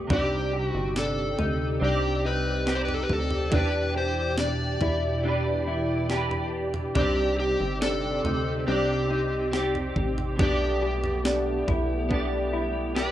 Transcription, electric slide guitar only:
0, 0, Header, 1, 2, 480
1, 0, Start_track
1, 0, Tempo, 857143
1, 58, Time_signature, 4, 2, 24, 8
1, 7344, End_track
2, 0, Start_track
2, 0, Title_t, "Electric slide guitar"
2, 0, Program_c, 0, 29
2, 73, Note_on_c, 0, 67, 76
2, 381, Note_off_c, 0, 67, 0
2, 381, Note_on_c, 0, 66, 76
2, 523, Note_off_c, 0, 66, 0
2, 551, Note_on_c, 0, 69, 74
2, 1030, Note_off_c, 0, 69, 0
2, 1032, Note_on_c, 0, 67, 77
2, 1267, Note_on_c, 0, 71, 87
2, 1272, Note_off_c, 0, 67, 0
2, 1542, Note_on_c, 0, 72, 65
2, 1547, Note_off_c, 0, 71, 0
2, 1589, Note_off_c, 0, 72, 0
2, 1596, Note_on_c, 0, 71, 64
2, 1641, Note_off_c, 0, 71, 0
2, 1645, Note_on_c, 0, 69, 68
2, 1691, Note_off_c, 0, 69, 0
2, 1697, Note_on_c, 0, 71, 71
2, 1743, Note_off_c, 0, 71, 0
2, 1752, Note_on_c, 0, 69, 84
2, 1985, Note_on_c, 0, 71, 81
2, 1992, Note_off_c, 0, 69, 0
2, 2224, Note_off_c, 0, 71, 0
2, 2226, Note_on_c, 0, 72, 84
2, 2459, Note_off_c, 0, 72, 0
2, 2461, Note_on_c, 0, 74, 86
2, 3637, Note_off_c, 0, 74, 0
2, 3901, Note_on_c, 0, 67, 100
2, 4135, Note_off_c, 0, 67, 0
2, 4141, Note_on_c, 0, 67, 80
2, 4377, Note_off_c, 0, 67, 0
2, 4379, Note_on_c, 0, 69, 101
2, 4857, Note_off_c, 0, 69, 0
2, 4859, Note_on_c, 0, 67, 90
2, 5818, Note_off_c, 0, 67, 0
2, 5825, Note_on_c, 0, 67, 77
2, 7267, Note_on_c, 0, 71, 70
2, 7344, Note_off_c, 0, 67, 0
2, 7344, Note_off_c, 0, 71, 0
2, 7344, End_track
0, 0, End_of_file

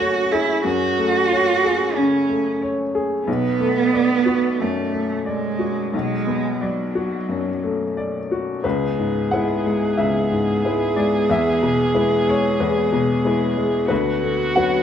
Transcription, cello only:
0, 0, Header, 1, 2, 480
1, 0, Start_track
1, 0, Tempo, 657895
1, 472, Time_signature, 4, 2, 24, 8
1, 3834, Tempo, 677966
1, 6714, Tempo, 655738
1, 10745, End_track
2, 0, Start_track
2, 0, Title_t, "Cello"
2, 0, Program_c, 0, 42
2, 0, Note_on_c, 0, 66, 77
2, 230, Note_on_c, 0, 64, 72
2, 241, Note_off_c, 0, 66, 0
2, 462, Note_off_c, 0, 64, 0
2, 466, Note_on_c, 0, 66, 90
2, 1427, Note_on_c, 0, 61, 66
2, 1438, Note_off_c, 0, 66, 0
2, 1907, Note_off_c, 0, 61, 0
2, 2380, Note_on_c, 0, 59, 89
2, 3351, Note_on_c, 0, 57, 65
2, 3361, Note_off_c, 0, 59, 0
2, 3830, Note_off_c, 0, 57, 0
2, 3834, Note_on_c, 0, 56, 58
2, 4305, Note_off_c, 0, 56, 0
2, 4323, Note_on_c, 0, 56, 66
2, 4795, Note_on_c, 0, 54, 50
2, 4805, Note_off_c, 0, 56, 0
2, 5751, Note_off_c, 0, 54, 0
2, 6227, Note_on_c, 0, 59, 49
2, 10034, Note_off_c, 0, 59, 0
2, 10056, Note_on_c, 0, 59, 59
2, 10745, Note_off_c, 0, 59, 0
2, 10745, End_track
0, 0, End_of_file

